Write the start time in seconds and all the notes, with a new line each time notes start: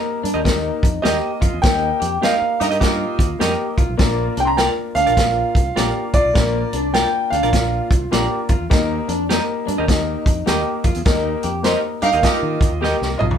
Already playing: A#3 D#4 G4 A#4
0.23 G2 D4, closed hi-hat
0.34 D#2 G4 A#4 D#5
0.44 A#3 D#4 G4 A#4, kick, snare, closed hi-hat
0.83 F2, kick, closed hi-hat
1.02 D#2 A#3 D#4 G4 A#4 D#5, snare, closed hi-hat
1.41 F2 F4, kick, closed hi-hat
1.53 E2
1.62 D#2 A#3 D#4 G4 A#4 G5, kick, snare, closed hi-hat
2.00 F2 G4, closed hi-hat
2.21 A#3 D#4 G4 A#4 D#5 F5, snare, closed hi-hat
2.42 muted fingered electric bass stroke
2.60 G2 D#4 G4 A#4 D#5, closed hi-hat
2.71 G4 A#4 D#5, closed hi-hat
2.80 A#3 D#4 F4 G4 A#4, kick, snare, closed hi-hat
3.19 D#2, kick, closed hi-hat
3.39 F2 A#3 D#4 G4 A#4 D#5, snare, closed hi-hat
3.77 C2 F4, kick, closed hi-hat
3.89 B1
3.97 A#1 A#3 D4 F4 A#4, kick, snare, closed hi-hat
4.37 C2 D4 G5, closed hi-hat
4.45 A#5 C6
4.56 A#3 D4 F4 A#4 D5 G5, snare, closed hi-hat
4.95 D2 D4 F5, closed hi-hat
5.07 A#1 F4 A#4 D5, closed hi-hat
5.16 A#3 D4 F4 A#4, kick, snare, closed hi-hat
5.55 C2, kick, closed hi-hat
5.75 A#1 A#3 D4 F4 G4 A#4 D5, snare, closed hi-hat
6.13 C2 F4 D5, kick, closed hi-hat
6.24 B1
6.33 A#1 A#3 D4 F4 A#4, kick, snare, closed hi-hat
6.73 C2 D4, closed hi-hat
6.93 A#3 D4 F4 A#4 D5 G5, snare, closed hi-hat
7.30 D2 D4 F5, closed hi-hat
7.43 A#1 F4 A#4 D5, closed hi-hat
7.52 A#3 D4 F4 A#4, kick, snare, closed hi-hat
7.90 C2, kick, closed hi-hat
8.11 A#1 A#3 D4 F4 G4 A#4 D5, snare, closed hi-hat
8.49 F2 F4, kick, closed hi-hat
8.60 E2
8.70 D#2 A#3 D#4 G4 A#4, kick, snare, closed hi-hat
9.09 F2 D4, closed hi-hat
9.29 A#3 D#4 G4 A#4 D#5, snare, closed hi-hat
9.67 G2 D4, closed hi-hat
9.78 D#2 G4 A#4 D#5
9.88 A#3 D#4 G4 A#4, kick, snare, closed hi-hat
10.26 F2, kick, closed hi-hat
10.46 D#2 A#3 D#4 G4 A#4 D#5, snare, closed hi-hat
10.84 F2 F4, kick, closed hi-hat
10.95 E2, closed hi-hat
11.05 D#2 A#3 D#4 G4 A#4, kick, snare, closed hi-hat
11.43 F2 G4, closed hi-hat
11.63 A#3 D#4 G4 A#4 C5 D#5, snare, closed hi-hat
12.02 G2 D#4 G4 A#4 F5, closed hi-hat
12.12 D#2 G4 A#4 D#5, closed hi-hat
12.21 A#3 D#4 F4 G4 A#4 D#5, kick, snare, closed hi-hat
12.43 D#3
12.61 D#2, kick, closed hi-hat
12.72 D#2
12.81 A#3 D#4 G4 A#4 D#5, snare
13.01 C2, snare
13.18 B1 F4 D#5, mid tom
13.31 floor tom